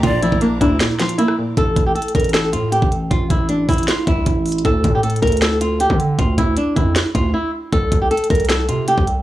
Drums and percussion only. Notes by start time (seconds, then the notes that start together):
0.03 kick, closed hi-hat
0.23 closed hi-hat
0.32 kick
0.41 closed hi-hat
0.61 kick, closed hi-hat
0.80 snare, closed hi-hat
0.99 snare, closed hi-hat
1.09 closed hi-hat
1.19 closed hi-hat
1.28 cross-stick
1.57 kick, closed hi-hat
1.76 kick, closed hi-hat
1.96 closed hi-hat
2.02 closed hi-hat
2.08 closed hi-hat
2.15 kick, closed hi-hat
2.20 closed hi-hat
2.24 closed hi-hat
2.29 closed hi-hat
2.34 snare, closed hi-hat
2.53 closed hi-hat
2.72 closed hi-hat
2.82 kick
2.92 closed hi-hat
3.11 kick, closed hi-hat
3.30 kick, closed hi-hat
3.49 closed hi-hat
3.69 kick, closed hi-hat, open hi-hat
3.73 closed hi-hat
3.78 closed hi-hat
3.83 closed hi-hat
3.88 snare, closed hi-hat
4.07 kick, closed hi-hat
4.26 kick, closed hi-hat
4.46 closed hi-hat, open hi-hat
4.52 closed hi-hat
4.58 closed hi-hat
4.65 kick, closed hi-hat
4.84 kick, closed hi-hat
5.03 closed hi-hat
5.10 closed hi-hat
5.16 closed hi-hat
5.23 kick, closed hi-hat
5.27 closed hi-hat
5.32 closed hi-hat
5.37 closed hi-hat
5.42 snare, closed hi-hat
5.61 closed hi-hat
5.80 closed hi-hat
5.90 kick
6.00 closed hi-hat
6.19 kick, closed hi-hat
6.38 kick, closed hi-hat
6.57 closed hi-hat
6.76 kick, closed hi-hat
6.96 snare, closed hi-hat
7.15 kick, closed hi-hat
7.73 kick, closed hi-hat
7.92 kick, closed hi-hat
8.11 closed hi-hat
8.17 closed hi-hat
8.24 closed hi-hat
8.30 kick, closed hi-hat
8.35 closed hi-hat
8.40 closed hi-hat
8.45 closed hi-hat
8.49 snare, closed hi-hat
8.69 closed hi-hat
8.88 closed hi-hat
8.98 kick
9.07 closed hi-hat